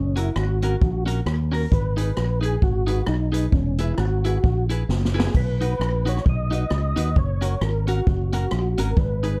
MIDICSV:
0, 0, Header, 1, 5, 480
1, 0, Start_track
1, 0, Tempo, 453172
1, 1820, Time_signature, 4, 2, 24, 8
1, 9956, End_track
2, 0, Start_track
2, 0, Title_t, "Tonewheel organ"
2, 0, Program_c, 0, 16
2, 0, Note_on_c, 0, 61, 75
2, 198, Note_on_c, 0, 64, 76
2, 201, Note_off_c, 0, 61, 0
2, 396, Note_off_c, 0, 64, 0
2, 398, Note_on_c, 0, 66, 80
2, 1104, Note_off_c, 0, 66, 0
2, 1640, Note_on_c, 0, 70, 102
2, 1832, Note_on_c, 0, 71, 107
2, 1837, Note_off_c, 0, 70, 0
2, 2541, Note_off_c, 0, 71, 0
2, 2599, Note_on_c, 0, 68, 96
2, 2791, Note_on_c, 0, 66, 96
2, 2797, Note_off_c, 0, 68, 0
2, 3265, Note_on_c, 0, 63, 85
2, 3279, Note_off_c, 0, 66, 0
2, 3750, Note_on_c, 0, 61, 80
2, 3757, Note_off_c, 0, 63, 0
2, 4030, Note_off_c, 0, 61, 0
2, 4030, Note_on_c, 0, 64, 75
2, 4213, Note_off_c, 0, 64, 0
2, 4235, Note_on_c, 0, 66, 75
2, 4942, Note_off_c, 0, 66, 0
2, 5488, Note_on_c, 0, 68, 86
2, 5662, Note_off_c, 0, 68, 0
2, 5685, Note_on_c, 0, 71, 101
2, 6446, Note_on_c, 0, 73, 95
2, 6451, Note_off_c, 0, 71, 0
2, 6621, Note_off_c, 0, 73, 0
2, 6664, Note_on_c, 0, 75, 108
2, 6924, Note_off_c, 0, 75, 0
2, 6936, Note_on_c, 0, 75, 120
2, 7603, Note_on_c, 0, 73, 94
2, 7619, Note_off_c, 0, 75, 0
2, 8084, Note_on_c, 0, 70, 83
2, 8085, Note_off_c, 0, 73, 0
2, 8330, Note_off_c, 0, 70, 0
2, 8351, Note_on_c, 0, 66, 85
2, 9314, Note_on_c, 0, 70, 91
2, 9332, Note_off_c, 0, 66, 0
2, 9509, Note_on_c, 0, 71, 93
2, 9513, Note_off_c, 0, 70, 0
2, 9956, Note_off_c, 0, 71, 0
2, 9956, End_track
3, 0, Start_track
3, 0, Title_t, "Clean electric guitar"
3, 0, Program_c, 1, 27
3, 168, Note_on_c, 1, 61, 73
3, 174, Note_on_c, 1, 66, 76
3, 185, Note_on_c, 1, 70, 91
3, 300, Note_off_c, 1, 61, 0
3, 304, Note_off_c, 1, 66, 0
3, 309, Note_off_c, 1, 70, 0
3, 665, Note_on_c, 1, 61, 66
3, 670, Note_on_c, 1, 66, 80
3, 681, Note_on_c, 1, 70, 84
3, 789, Note_off_c, 1, 61, 0
3, 792, Note_off_c, 1, 66, 0
3, 797, Note_off_c, 1, 70, 0
3, 1123, Note_on_c, 1, 61, 92
3, 1133, Note_on_c, 1, 66, 87
3, 1141, Note_on_c, 1, 70, 100
3, 1258, Note_off_c, 1, 61, 0
3, 1263, Note_off_c, 1, 66, 0
3, 1267, Note_off_c, 1, 70, 0
3, 1606, Note_on_c, 1, 61, 82
3, 1615, Note_on_c, 1, 66, 84
3, 1623, Note_on_c, 1, 70, 97
3, 1740, Note_off_c, 1, 61, 0
3, 1745, Note_off_c, 1, 66, 0
3, 1748, Note_off_c, 1, 70, 0
3, 2084, Note_on_c, 1, 63, 81
3, 2094, Note_on_c, 1, 68, 85
3, 2102, Note_on_c, 1, 71, 81
3, 2219, Note_off_c, 1, 63, 0
3, 2224, Note_off_c, 1, 68, 0
3, 2228, Note_off_c, 1, 71, 0
3, 2553, Note_on_c, 1, 63, 68
3, 2569, Note_on_c, 1, 68, 86
3, 2574, Note_on_c, 1, 71, 69
3, 2693, Note_off_c, 1, 63, 0
3, 2701, Note_off_c, 1, 68, 0
3, 2704, Note_off_c, 1, 71, 0
3, 3037, Note_on_c, 1, 63, 93
3, 3048, Note_on_c, 1, 68, 89
3, 3060, Note_on_c, 1, 71, 112
3, 3175, Note_off_c, 1, 63, 0
3, 3181, Note_off_c, 1, 68, 0
3, 3187, Note_off_c, 1, 71, 0
3, 3517, Note_on_c, 1, 63, 80
3, 3529, Note_on_c, 1, 68, 85
3, 3538, Note_on_c, 1, 71, 91
3, 3656, Note_off_c, 1, 63, 0
3, 3661, Note_off_c, 1, 68, 0
3, 3666, Note_off_c, 1, 71, 0
3, 4013, Note_on_c, 1, 64, 69
3, 4024, Note_on_c, 1, 68, 72
3, 4031, Note_on_c, 1, 71, 81
3, 4144, Note_off_c, 1, 64, 0
3, 4149, Note_off_c, 1, 68, 0
3, 4152, Note_off_c, 1, 71, 0
3, 4499, Note_on_c, 1, 64, 71
3, 4513, Note_on_c, 1, 68, 83
3, 4516, Note_on_c, 1, 71, 74
3, 4626, Note_off_c, 1, 64, 0
3, 4633, Note_off_c, 1, 68, 0
3, 4635, Note_off_c, 1, 71, 0
3, 4974, Note_on_c, 1, 64, 83
3, 4987, Note_on_c, 1, 68, 86
3, 4993, Note_on_c, 1, 71, 97
3, 5104, Note_off_c, 1, 64, 0
3, 5110, Note_off_c, 1, 68, 0
3, 5113, Note_off_c, 1, 71, 0
3, 5448, Note_on_c, 1, 64, 87
3, 5459, Note_on_c, 1, 68, 86
3, 5467, Note_on_c, 1, 71, 102
3, 5581, Note_off_c, 1, 64, 0
3, 5586, Note_off_c, 1, 68, 0
3, 5590, Note_off_c, 1, 71, 0
3, 5940, Note_on_c, 1, 63, 74
3, 5950, Note_on_c, 1, 66, 77
3, 5957, Note_on_c, 1, 71, 82
3, 6067, Note_off_c, 1, 63, 0
3, 6072, Note_off_c, 1, 66, 0
3, 6075, Note_off_c, 1, 71, 0
3, 6413, Note_on_c, 1, 63, 74
3, 6422, Note_on_c, 1, 66, 81
3, 6431, Note_on_c, 1, 71, 84
3, 6543, Note_off_c, 1, 63, 0
3, 6547, Note_off_c, 1, 66, 0
3, 6552, Note_off_c, 1, 71, 0
3, 6892, Note_on_c, 1, 63, 93
3, 6903, Note_on_c, 1, 66, 96
3, 6914, Note_on_c, 1, 71, 99
3, 7023, Note_off_c, 1, 63, 0
3, 7028, Note_off_c, 1, 66, 0
3, 7034, Note_off_c, 1, 71, 0
3, 7373, Note_on_c, 1, 63, 100
3, 7382, Note_on_c, 1, 66, 100
3, 7393, Note_on_c, 1, 71, 109
3, 7503, Note_off_c, 1, 63, 0
3, 7507, Note_off_c, 1, 66, 0
3, 7513, Note_off_c, 1, 71, 0
3, 7851, Note_on_c, 1, 61, 72
3, 7856, Note_on_c, 1, 66, 80
3, 7864, Note_on_c, 1, 70, 84
3, 7982, Note_off_c, 1, 61, 0
3, 7984, Note_off_c, 1, 66, 0
3, 7988, Note_off_c, 1, 70, 0
3, 8340, Note_on_c, 1, 61, 72
3, 8351, Note_on_c, 1, 66, 73
3, 8354, Note_on_c, 1, 70, 79
3, 8467, Note_off_c, 1, 61, 0
3, 8472, Note_off_c, 1, 66, 0
3, 8473, Note_off_c, 1, 70, 0
3, 8822, Note_on_c, 1, 61, 87
3, 8828, Note_on_c, 1, 66, 91
3, 8836, Note_on_c, 1, 70, 101
3, 8947, Note_off_c, 1, 61, 0
3, 8950, Note_off_c, 1, 66, 0
3, 8954, Note_off_c, 1, 70, 0
3, 9300, Note_on_c, 1, 61, 85
3, 9310, Note_on_c, 1, 66, 87
3, 9317, Note_on_c, 1, 70, 91
3, 9426, Note_off_c, 1, 61, 0
3, 9431, Note_off_c, 1, 66, 0
3, 9434, Note_off_c, 1, 70, 0
3, 9778, Note_on_c, 1, 63, 78
3, 9783, Note_on_c, 1, 68, 70
3, 9794, Note_on_c, 1, 71, 80
3, 9905, Note_off_c, 1, 63, 0
3, 9907, Note_off_c, 1, 68, 0
3, 9913, Note_off_c, 1, 71, 0
3, 9956, End_track
4, 0, Start_track
4, 0, Title_t, "Fingered electric bass"
4, 0, Program_c, 2, 33
4, 0, Note_on_c, 2, 30, 97
4, 305, Note_off_c, 2, 30, 0
4, 380, Note_on_c, 2, 32, 98
4, 788, Note_off_c, 2, 32, 0
4, 859, Note_on_c, 2, 34, 91
4, 1267, Note_off_c, 2, 34, 0
4, 1334, Note_on_c, 2, 39, 95
4, 1744, Note_off_c, 2, 39, 0
4, 1815, Note_on_c, 2, 32, 104
4, 2225, Note_off_c, 2, 32, 0
4, 2301, Note_on_c, 2, 34, 84
4, 2708, Note_off_c, 2, 34, 0
4, 2775, Note_on_c, 2, 32, 82
4, 3185, Note_off_c, 2, 32, 0
4, 3255, Note_on_c, 2, 35, 92
4, 3665, Note_off_c, 2, 35, 0
4, 3733, Note_on_c, 2, 28, 110
4, 4144, Note_off_c, 2, 28, 0
4, 4218, Note_on_c, 2, 32, 93
4, 4626, Note_off_c, 2, 32, 0
4, 4701, Note_on_c, 2, 34, 73
4, 5109, Note_off_c, 2, 34, 0
4, 5178, Note_on_c, 2, 30, 95
4, 5586, Note_off_c, 2, 30, 0
4, 5658, Note_on_c, 2, 35, 98
4, 6066, Note_off_c, 2, 35, 0
4, 6137, Note_on_c, 2, 34, 97
4, 6546, Note_off_c, 2, 34, 0
4, 6626, Note_on_c, 2, 35, 78
4, 7031, Note_off_c, 2, 35, 0
4, 7104, Note_on_c, 2, 37, 93
4, 7337, Note_off_c, 2, 37, 0
4, 7376, Note_on_c, 2, 39, 89
4, 7548, Note_off_c, 2, 39, 0
4, 7585, Note_on_c, 2, 30, 93
4, 7990, Note_off_c, 2, 30, 0
4, 8062, Note_on_c, 2, 32, 95
4, 8468, Note_off_c, 2, 32, 0
4, 8544, Note_on_c, 2, 30, 90
4, 8950, Note_off_c, 2, 30, 0
4, 9024, Note_on_c, 2, 34, 88
4, 9257, Note_off_c, 2, 34, 0
4, 9301, Note_on_c, 2, 32, 86
4, 9471, Note_off_c, 2, 32, 0
4, 9500, Note_on_c, 2, 32, 97
4, 9907, Note_off_c, 2, 32, 0
4, 9956, End_track
5, 0, Start_track
5, 0, Title_t, "Drums"
5, 175, Note_on_c, 9, 42, 88
5, 281, Note_off_c, 9, 42, 0
5, 379, Note_on_c, 9, 37, 109
5, 485, Note_off_c, 9, 37, 0
5, 660, Note_on_c, 9, 42, 83
5, 766, Note_off_c, 9, 42, 0
5, 863, Note_on_c, 9, 36, 110
5, 969, Note_off_c, 9, 36, 0
5, 1137, Note_on_c, 9, 42, 91
5, 1243, Note_off_c, 9, 42, 0
5, 1339, Note_on_c, 9, 37, 113
5, 1445, Note_off_c, 9, 37, 0
5, 1629, Note_on_c, 9, 46, 56
5, 1735, Note_off_c, 9, 46, 0
5, 1819, Note_on_c, 9, 36, 108
5, 1821, Note_on_c, 9, 44, 56
5, 1925, Note_off_c, 9, 36, 0
5, 1927, Note_off_c, 9, 44, 0
5, 2092, Note_on_c, 9, 42, 92
5, 2198, Note_off_c, 9, 42, 0
5, 2296, Note_on_c, 9, 37, 105
5, 2402, Note_off_c, 9, 37, 0
5, 2572, Note_on_c, 9, 42, 77
5, 2678, Note_off_c, 9, 42, 0
5, 2776, Note_on_c, 9, 36, 101
5, 2882, Note_off_c, 9, 36, 0
5, 3047, Note_on_c, 9, 42, 91
5, 3153, Note_off_c, 9, 42, 0
5, 3247, Note_on_c, 9, 37, 111
5, 3352, Note_off_c, 9, 37, 0
5, 3535, Note_on_c, 9, 42, 100
5, 3641, Note_off_c, 9, 42, 0
5, 3733, Note_on_c, 9, 36, 107
5, 3838, Note_off_c, 9, 36, 0
5, 4008, Note_on_c, 9, 42, 97
5, 4114, Note_off_c, 9, 42, 0
5, 4213, Note_on_c, 9, 37, 111
5, 4319, Note_off_c, 9, 37, 0
5, 4497, Note_on_c, 9, 42, 81
5, 4603, Note_off_c, 9, 42, 0
5, 4701, Note_on_c, 9, 36, 107
5, 4807, Note_off_c, 9, 36, 0
5, 4978, Note_on_c, 9, 42, 100
5, 5084, Note_off_c, 9, 42, 0
5, 5186, Note_on_c, 9, 38, 54
5, 5292, Note_off_c, 9, 38, 0
5, 5349, Note_on_c, 9, 38, 65
5, 5455, Note_off_c, 9, 38, 0
5, 5505, Note_on_c, 9, 38, 107
5, 5611, Note_off_c, 9, 38, 0
5, 5661, Note_on_c, 9, 49, 76
5, 5662, Note_on_c, 9, 36, 109
5, 5767, Note_off_c, 9, 49, 0
5, 5768, Note_off_c, 9, 36, 0
5, 5945, Note_on_c, 9, 42, 87
5, 6051, Note_off_c, 9, 42, 0
5, 6156, Note_on_c, 9, 37, 106
5, 6262, Note_off_c, 9, 37, 0
5, 6429, Note_on_c, 9, 42, 80
5, 6535, Note_off_c, 9, 42, 0
5, 6536, Note_on_c, 9, 37, 64
5, 6629, Note_on_c, 9, 36, 107
5, 6642, Note_off_c, 9, 37, 0
5, 6735, Note_off_c, 9, 36, 0
5, 6907, Note_on_c, 9, 42, 86
5, 7013, Note_off_c, 9, 42, 0
5, 7101, Note_on_c, 9, 37, 115
5, 7206, Note_off_c, 9, 37, 0
5, 7383, Note_on_c, 9, 42, 104
5, 7489, Note_off_c, 9, 42, 0
5, 7585, Note_on_c, 9, 36, 111
5, 7691, Note_off_c, 9, 36, 0
5, 7859, Note_on_c, 9, 42, 91
5, 7965, Note_off_c, 9, 42, 0
5, 8065, Note_on_c, 9, 37, 100
5, 8171, Note_off_c, 9, 37, 0
5, 8341, Note_on_c, 9, 42, 76
5, 8447, Note_off_c, 9, 42, 0
5, 8547, Note_on_c, 9, 36, 109
5, 8653, Note_off_c, 9, 36, 0
5, 8820, Note_on_c, 9, 42, 88
5, 8926, Note_off_c, 9, 42, 0
5, 9015, Note_on_c, 9, 37, 126
5, 9121, Note_off_c, 9, 37, 0
5, 9299, Note_on_c, 9, 42, 105
5, 9405, Note_off_c, 9, 42, 0
5, 9499, Note_on_c, 9, 36, 111
5, 9605, Note_off_c, 9, 36, 0
5, 9780, Note_on_c, 9, 42, 79
5, 9886, Note_off_c, 9, 42, 0
5, 9956, End_track
0, 0, End_of_file